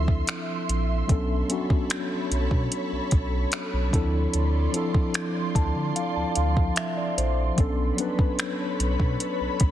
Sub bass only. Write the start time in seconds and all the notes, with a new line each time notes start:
Already playing: D2
0.69 A#1
1.09 B1
2.31 B1
2.51 B2
2.92 B1
3.12 B1
3.73 B1
3.93 D2
4.34 D2
5.55 D2
5.76 D3
6.16 D2
6.37 D2
7.17 A#1
7.58 B1
8.80 B1
9.00 B2
9.40 B1
9.61 B1